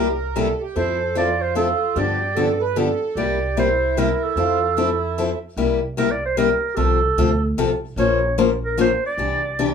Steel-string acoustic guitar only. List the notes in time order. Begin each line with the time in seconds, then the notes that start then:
0.36 C3 G3 A#3 E4 G4
0.76 F3 C4 E4 A4
1.15 F3 C4 E4 A4
1.55 F3 C4 E4 A4
1.96 D3 F3 B3 D4 G4
2.36 D3 F3 B3 D4 G4
2.76 D3 F3 B3 D4 G4
3.17 C3 G3 A#3 E4 G4
3.57 C3 G3 A#3 E4 G4
3.97 C3 G3 A#3 E4 G4
4.37 F3 C4 E4 A4
4.77 F3 C4 E4 A4
5.18 F3 C4 E4 A4
5.57 C3 G3 A#3 E4 G4
5.97 C3 G3 A#3 E4 G4
6.37 C3 G3 A#3 E4 G4
6.77 C3 F3 C4 F4 A4
7.18 C3 F3 C4 F4 A4
7.58 C3 F3 C4 F4 A4
7.97 F3 A#3 C#4 F4 C5
8.38 F3 A#3 C#4 F4 C5
8.77 F3 A#3 C#4 F4 C5
9.18 C3 E3 D4 G4
9.59 C3 E3 D4 G4